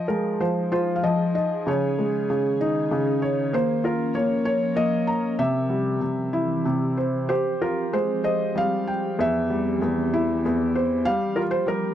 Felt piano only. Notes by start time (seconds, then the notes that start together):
Already playing: F3
0.08 G#3 A#4
0.40 F3 C5
0.72 F4 C5
0.96 F5
1.03 F3 D#5
1.35 D#5
1.67 C#3 C#5
1.99 G#3
2.30 C#3
2.61 D#4
2.91 C#3
3.22 C#5
3.53 A#3 C5
3.84 F4 A#4
4.15 A#3 C#5
4.45 C#5
4.76 A#3 D#5
5.07 A#5
5.39 C3 E5
5.69 G3
6.01 C3
6.33 E4
6.65 C3
6.97 C5
7.29 G4 C5
7.61 F4 A#4
7.93 G#3 C5
8.24 C5 D#5
8.55 G3 F5
8.87 G5
9.19 E2 E5
9.50 G3
9.82 E2
10.13 E4
10.45 E2
10.75 C5
11.05 G3 F5
11.36 F4 A#4
11.51 C5
11.67 G3 A#4